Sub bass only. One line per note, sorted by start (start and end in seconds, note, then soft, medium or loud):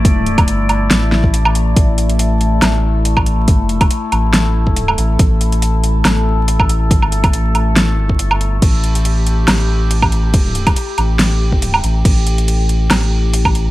0.00 0.46 A1 loud
0.48 0.89 G1 loud
0.91 1.75 A1 loud
1.77 2.61 A1 loud
2.62 3.89 A1 loud
4.12 4.96 A1 loud
4.98 5.18 A1 loud
5.19 6.03 A1 loud
6.05 6.94 A1 loud
6.94 7.20 G#1 loud
7.20 7.32 G1 loud
7.34 7.93 A1 loud
7.93 8.18 G#1 loud
8.19 8.61 G1 loud
8.62 9.46 A1 loud
9.48 10.75 A1 loud
10.98 11.82 A1 loud
11.84 12.03 A1 loud
12.05 12.89 A1 loud
12.91 13.71 A1 loud